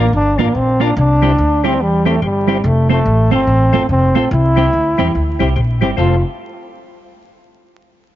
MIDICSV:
0, 0, Header, 1, 6, 480
1, 0, Start_track
1, 0, Key_signature, -1, "major"
1, 0, Tempo, 417246
1, 1114, Time_signature, 4, 2, 24, 8
1, 9380, End_track
2, 0, Start_track
2, 0, Title_t, "Tonewheel organ"
2, 0, Program_c, 0, 16
2, 437, Note_on_c, 0, 62, 89
2, 444, Note_on_c, 0, 65, 93
2, 448, Note_on_c, 0, 70, 87
2, 451, Note_on_c, 0, 74, 108
2, 556, Note_off_c, 0, 62, 0
2, 559, Note_off_c, 0, 65, 0
2, 561, Note_off_c, 0, 70, 0
2, 563, Note_off_c, 0, 74, 0
2, 921, Note_on_c, 0, 62, 108
2, 927, Note_on_c, 0, 65, 96
2, 930, Note_on_c, 0, 70, 87
2, 936, Note_on_c, 0, 74, 117
2, 1038, Note_off_c, 0, 62, 0
2, 1041, Note_off_c, 0, 65, 0
2, 1042, Note_off_c, 0, 70, 0
2, 1045, Note_off_c, 0, 74, 0
2, 1397, Note_on_c, 0, 60, 78
2, 1403, Note_on_c, 0, 64, 79
2, 1407, Note_on_c, 0, 67, 77
2, 1412, Note_on_c, 0, 72, 91
2, 1516, Note_off_c, 0, 60, 0
2, 1519, Note_off_c, 0, 64, 0
2, 1522, Note_off_c, 0, 67, 0
2, 1524, Note_off_c, 0, 72, 0
2, 1881, Note_on_c, 0, 60, 80
2, 1884, Note_on_c, 0, 64, 80
2, 1891, Note_on_c, 0, 67, 85
2, 1894, Note_on_c, 0, 72, 103
2, 1998, Note_off_c, 0, 60, 0
2, 2000, Note_off_c, 0, 64, 0
2, 2004, Note_off_c, 0, 67, 0
2, 2005, Note_off_c, 0, 72, 0
2, 2362, Note_on_c, 0, 60, 105
2, 2369, Note_on_c, 0, 64, 87
2, 2371, Note_on_c, 0, 67, 86
2, 2375, Note_on_c, 0, 72, 103
2, 2480, Note_off_c, 0, 60, 0
2, 2483, Note_off_c, 0, 64, 0
2, 2484, Note_off_c, 0, 67, 0
2, 2486, Note_off_c, 0, 72, 0
2, 2555, Note_on_c, 0, 67, 41
2, 2557, Note_on_c, 0, 72, 43
2, 2615, Note_off_c, 0, 67, 0
2, 2616, Note_off_c, 0, 72, 0
2, 2846, Note_on_c, 0, 60, 99
2, 2851, Note_on_c, 0, 64, 97
2, 2855, Note_on_c, 0, 67, 90
2, 2861, Note_on_c, 0, 72, 115
2, 2962, Note_off_c, 0, 60, 0
2, 2964, Note_off_c, 0, 64, 0
2, 2966, Note_off_c, 0, 67, 0
2, 2969, Note_off_c, 0, 72, 0
2, 3326, Note_on_c, 0, 60, 91
2, 3332, Note_on_c, 0, 65, 81
2, 3338, Note_on_c, 0, 69, 86
2, 3342, Note_on_c, 0, 72, 94
2, 3442, Note_off_c, 0, 60, 0
2, 3445, Note_off_c, 0, 65, 0
2, 3448, Note_off_c, 0, 69, 0
2, 3450, Note_off_c, 0, 72, 0
2, 3808, Note_on_c, 0, 60, 88
2, 3811, Note_on_c, 0, 65, 79
2, 3817, Note_on_c, 0, 69, 80
2, 3821, Note_on_c, 0, 72, 91
2, 3923, Note_off_c, 0, 60, 0
2, 3924, Note_off_c, 0, 65, 0
2, 3927, Note_off_c, 0, 69, 0
2, 3929, Note_off_c, 0, 72, 0
2, 4285, Note_on_c, 0, 60, 99
2, 4289, Note_on_c, 0, 65, 89
2, 4294, Note_on_c, 0, 69, 85
2, 4299, Note_on_c, 0, 72, 109
2, 4401, Note_off_c, 0, 60, 0
2, 4403, Note_off_c, 0, 65, 0
2, 4406, Note_off_c, 0, 69, 0
2, 4408, Note_off_c, 0, 72, 0
2, 4770, Note_on_c, 0, 60, 97
2, 4774, Note_on_c, 0, 65, 96
2, 4780, Note_on_c, 0, 69, 85
2, 4784, Note_on_c, 0, 72, 108
2, 4884, Note_off_c, 0, 60, 0
2, 4886, Note_off_c, 0, 65, 0
2, 4889, Note_off_c, 0, 69, 0
2, 4891, Note_off_c, 0, 72, 0
2, 5243, Note_on_c, 0, 60, 83
2, 5247, Note_on_c, 0, 64, 78
2, 5253, Note_on_c, 0, 67, 82
2, 5257, Note_on_c, 0, 72, 98
2, 5360, Note_off_c, 0, 60, 0
2, 5362, Note_off_c, 0, 64, 0
2, 5365, Note_off_c, 0, 67, 0
2, 5367, Note_off_c, 0, 72, 0
2, 5723, Note_on_c, 0, 60, 88
2, 5728, Note_on_c, 0, 64, 85
2, 5732, Note_on_c, 0, 67, 78
2, 5737, Note_on_c, 0, 72, 99
2, 5840, Note_off_c, 0, 60, 0
2, 5843, Note_off_c, 0, 64, 0
2, 5845, Note_off_c, 0, 67, 0
2, 5847, Note_off_c, 0, 72, 0
2, 6204, Note_on_c, 0, 60, 98
2, 6206, Note_on_c, 0, 64, 85
2, 6213, Note_on_c, 0, 67, 91
2, 6217, Note_on_c, 0, 72, 105
2, 6321, Note_off_c, 0, 60, 0
2, 6322, Note_off_c, 0, 64, 0
2, 6325, Note_off_c, 0, 67, 0
2, 6327, Note_off_c, 0, 72, 0
2, 6394, Note_on_c, 0, 72, 46
2, 6395, Note_on_c, 0, 67, 44
2, 6455, Note_off_c, 0, 67, 0
2, 6455, Note_off_c, 0, 72, 0
2, 6683, Note_on_c, 0, 60, 89
2, 6686, Note_on_c, 0, 64, 88
2, 6692, Note_on_c, 0, 67, 88
2, 6696, Note_on_c, 0, 72, 111
2, 6800, Note_off_c, 0, 60, 0
2, 6802, Note_off_c, 0, 64, 0
2, 6804, Note_off_c, 0, 67, 0
2, 6807, Note_off_c, 0, 72, 0
2, 6864, Note_on_c, 0, 60, 86
2, 6870, Note_on_c, 0, 65, 85
2, 6871, Note_on_c, 0, 69, 74
2, 6876, Note_on_c, 0, 72, 95
2, 7090, Note_off_c, 0, 60, 0
2, 7093, Note_off_c, 0, 65, 0
2, 7094, Note_off_c, 0, 69, 0
2, 7096, Note_off_c, 0, 72, 0
2, 9380, End_track
3, 0, Start_track
3, 0, Title_t, "Clean electric guitar"
3, 0, Program_c, 1, 27
3, 0, Note_on_c, 1, 62, 85
3, 0, Note_on_c, 1, 65, 90
3, 0, Note_on_c, 1, 70, 93
3, 118, Note_off_c, 1, 62, 0
3, 119, Note_off_c, 1, 65, 0
3, 123, Note_off_c, 1, 70, 0
3, 449, Note_on_c, 1, 58, 94
3, 456, Note_on_c, 1, 62, 82
3, 462, Note_on_c, 1, 65, 88
3, 463, Note_on_c, 1, 70, 94
3, 593, Note_off_c, 1, 58, 0
3, 596, Note_off_c, 1, 62, 0
3, 599, Note_off_c, 1, 65, 0
3, 600, Note_off_c, 1, 70, 0
3, 920, Note_on_c, 1, 58, 91
3, 929, Note_on_c, 1, 62, 88
3, 934, Note_on_c, 1, 65, 101
3, 938, Note_on_c, 1, 70, 106
3, 1068, Note_off_c, 1, 58, 0
3, 1073, Note_off_c, 1, 62, 0
3, 1075, Note_off_c, 1, 65, 0
3, 1077, Note_off_c, 1, 70, 0
3, 1409, Note_on_c, 1, 55, 87
3, 1414, Note_on_c, 1, 60, 86
3, 1423, Note_on_c, 1, 64, 87
3, 1430, Note_on_c, 1, 67, 98
3, 1553, Note_off_c, 1, 55, 0
3, 1556, Note_off_c, 1, 60, 0
3, 1560, Note_off_c, 1, 64, 0
3, 1564, Note_off_c, 1, 67, 0
3, 1889, Note_on_c, 1, 55, 90
3, 1892, Note_on_c, 1, 60, 88
3, 1900, Note_on_c, 1, 64, 93
3, 1905, Note_on_c, 1, 67, 87
3, 2033, Note_off_c, 1, 55, 0
3, 2035, Note_off_c, 1, 60, 0
3, 2039, Note_off_c, 1, 64, 0
3, 2041, Note_off_c, 1, 67, 0
3, 2365, Note_on_c, 1, 55, 83
3, 2371, Note_on_c, 1, 60, 89
3, 2378, Note_on_c, 1, 64, 75
3, 2383, Note_on_c, 1, 67, 91
3, 2512, Note_off_c, 1, 55, 0
3, 2514, Note_off_c, 1, 60, 0
3, 2518, Note_off_c, 1, 64, 0
3, 2521, Note_off_c, 1, 67, 0
3, 2847, Note_on_c, 1, 55, 77
3, 2853, Note_on_c, 1, 60, 84
3, 2859, Note_on_c, 1, 64, 85
3, 2865, Note_on_c, 1, 67, 85
3, 2993, Note_off_c, 1, 55, 0
3, 2996, Note_off_c, 1, 60, 0
3, 2999, Note_off_c, 1, 64, 0
3, 3002, Note_off_c, 1, 67, 0
3, 3330, Note_on_c, 1, 57, 79
3, 3338, Note_on_c, 1, 60, 86
3, 3344, Note_on_c, 1, 65, 75
3, 3350, Note_on_c, 1, 69, 77
3, 3475, Note_off_c, 1, 57, 0
3, 3478, Note_off_c, 1, 60, 0
3, 3482, Note_off_c, 1, 65, 0
3, 3485, Note_off_c, 1, 69, 0
3, 3810, Note_on_c, 1, 57, 97
3, 3816, Note_on_c, 1, 60, 97
3, 3825, Note_on_c, 1, 65, 109
3, 3830, Note_on_c, 1, 69, 94
3, 3955, Note_off_c, 1, 57, 0
3, 3957, Note_off_c, 1, 60, 0
3, 3962, Note_off_c, 1, 65, 0
3, 3965, Note_off_c, 1, 69, 0
3, 4297, Note_on_c, 1, 57, 79
3, 4303, Note_on_c, 1, 60, 93
3, 4309, Note_on_c, 1, 65, 80
3, 4315, Note_on_c, 1, 69, 99
3, 4438, Note_off_c, 1, 57, 0
3, 4441, Note_off_c, 1, 60, 0
3, 4444, Note_off_c, 1, 65, 0
3, 4447, Note_off_c, 1, 69, 0
3, 4780, Note_on_c, 1, 57, 93
3, 4787, Note_on_c, 1, 60, 99
3, 4792, Note_on_c, 1, 65, 87
3, 4802, Note_on_c, 1, 69, 106
3, 4920, Note_off_c, 1, 57, 0
3, 4923, Note_off_c, 1, 60, 0
3, 4926, Note_off_c, 1, 65, 0
3, 4931, Note_off_c, 1, 69, 0
3, 5257, Note_on_c, 1, 55, 72
3, 5264, Note_on_c, 1, 60, 77
3, 5267, Note_on_c, 1, 64, 94
3, 5274, Note_on_c, 1, 67, 95
3, 5398, Note_off_c, 1, 55, 0
3, 5402, Note_off_c, 1, 60, 0
3, 5403, Note_off_c, 1, 64, 0
3, 5407, Note_off_c, 1, 67, 0
3, 5733, Note_on_c, 1, 55, 84
3, 5744, Note_on_c, 1, 60, 101
3, 5745, Note_on_c, 1, 64, 114
3, 5751, Note_on_c, 1, 67, 112
3, 5876, Note_off_c, 1, 55, 0
3, 5881, Note_off_c, 1, 60, 0
3, 5882, Note_off_c, 1, 64, 0
3, 5885, Note_off_c, 1, 67, 0
3, 6214, Note_on_c, 1, 55, 73
3, 6225, Note_on_c, 1, 60, 73
3, 6230, Note_on_c, 1, 64, 87
3, 6237, Note_on_c, 1, 67, 80
3, 6356, Note_off_c, 1, 55, 0
3, 6362, Note_off_c, 1, 60, 0
3, 6364, Note_off_c, 1, 64, 0
3, 6368, Note_off_c, 1, 67, 0
3, 6696, Note_on_c, 1, 55, 84
3, 6702, Note_on_c, 1, 60, 80
3, 6709, Note_on_c, 1, 64, 87
3, 6715, Note_on_c, 1, 67, 93
3, 6837, Note_off_c, 1, 55, 0
3, 6840, Note_off_c, 1, 60, 0
3, 6844, Note_off_c, 1, 64, 0
3, 6847, Note_off_c, 1, 67, 0
3, 6879, Note_on_c, 1, 57, 82
3, 6884, Note_on_c, 1, 60, 81
3, 6887, Note_on_c, 1, 65, 83
3, 6893, Note_on_c, 1, 69, 93
3, 7055, Note_off_c, 1, 57, 0
3, 7058, Note_off_c, 1, 60, 0
3, 7059, Note_off_c, 1, 65, 0
3, 7062, Note_off_c, 1, 69, 0
3, 9380, End_track
4, 0, Start_track
4, 0, Title_t, "Trombone"
4, 0, Program_c, 2, 57
4, 0, Note_on_c, 2, 58, 100
4, 147, Note_off_c, 2, 58, 0
4, 171, Note_on_c, 2, 62, 106
4, 469, Note_on_c, 2, 58, 91
4, 487, Note_off_c, 2, 62, 0
4, 654, Note_on_c, 2, 60, 107
4, 671, Note_off_c, 2, 58, 0
4, 944, Note_on_c, 2, 62, 102
4, 962, Note_off_c, 2, 60, 0
4, 1119, Note_off_c, 2, 62, 0
4, 1126, Note_on_c, 2, 62, 110
4, 1899, Note_on_c, 2, 60, 93
4, 1916, Note_off_c, 2, 62, 0
4, 2084, Note_on_c, 2, 55, 93
4, 2101, Note_off_c, 2, 60, 0
4, 2376, Note_on_c, 2, 57, 87
4, 2393, Note_off_c, 2, 55, 0
4, 2558, Note_off_c, 2, 57, 0
4, 2576, Note_on_c, 2, 55, 91
4, 3053, Note_on_c, 2, 57, 90
4, 3070, Note_off_c, 2, 55, 0
4, 3341, Note_off_c, 2, 57, 0
4, 3349, Note_on_c, 2, 57, 97
4, 3788, Note_off_c, 2, 57, 0
4, 3825, Note_on_c, 2, 60, 107
4, 4437, Note_off_c, 2, 60, 0
4, 4489, Note_on_c, 2, 60, 104
4, 4930, Note_off_c, 2, 60, 0
4, 4969, Note_on_c, 2, 64, 117
4, 6356, Note_off_c, 2, 64, 0
4, 6879, Note_on_c, 2, 65, 92
4, 7153, Note_off_c, 2, 65, 0
4, 9380, End_track
5, 0, Start_track
5, 0, Title_t, "Upright bass"
5, 0, Program_c, 3, 32
5, 149, Note_on_c, 3, 31, 92
5, 403, Note_off_c, 3, 31, 0
5, 445, Note_on_c, 3, 33, 88
5, 603, Note_off_c, 3, 33, 0
5, 630, Note_on_c, 3, 34, 94
5, 1040, Note_off_c, 3, 34, 0
5, 1110, Note_on_c, 3, 36, 114
5, 1520, Note_off_c, 3, 36, 0
5, 1590, Note_on_c, 3, 38, 102
5, 2074, Note_off_c, 3, 38, 0
5, 2074, Note_on_c, 3, 40, 91
5, 2483, Note_off_c, 3, 40, 0
5, 2555, Note_on_c, 3, 31, 94
5, 2964, Note_off_c, 3, 31, 0
5, 3035, Note_on_c, 3, 29, 108
5, 3444, Note_off_c, 3, 29, 0
5, 3513, Note_on_c, 3, 33, 99
5, 3767, Note_off_c, 3, 33, 0
5, 3809, Note_on_c, 3, 31, 87
5, 3967, Note_off_c, 3, 31, 0
5, 3994, Note_on_c, 3, 33, 102
5, 4247, Note_off_c, 3, 33, 0
5, 4474, Note_on_c, 3, 29, 96
5, 4727, Note_off_c, 3, 29, 0
5, 4775, Note_on_c, 3, 34, 89
5, 4930, Note_off_c, 3, 34, 0
5, 4958, Note_on_c, 3, 36, 116
5, 5366, Note_off_c, 3, 36, 0
5, 5441, Note_on_c, 3, 38, 95
5, 5691, Note_off_c, 3, 38, 0
5, 5736, Note_on_c, 3, 40, 92
5, 5891, Note_off_c, 3, 40, 0
5, 5923, Note_on_c, 3, 38, 89
5, 6172, Note_off_c, 3, 38, 0
5, 6215, Note_on_c, 3, 36, 87
5, 6370, Note_off_c, 3, 36, 0
5, 6398, Note_on_c, 3, 34, 99
5, 6697, Note_off_c, 3, 34, 0
5, 6697, Note_on_c, 3, 31, 87
5, 6851, Note_off_c, 3, 31, 0
5, 6878, Note_on_c, 3, 29, 97
5, 7153, Note_off_c, 3, 29, 0
5, 9380, End_track
6, 0, Start_track
6, 0, Title_t, "Muted clean electric guitar strokes"
6, 2076, Note_on_c, 9, 29, 48
6, 2191, Note_off_c, 9, 29, 0
6, 9380, End_track
0, 0, End_of_file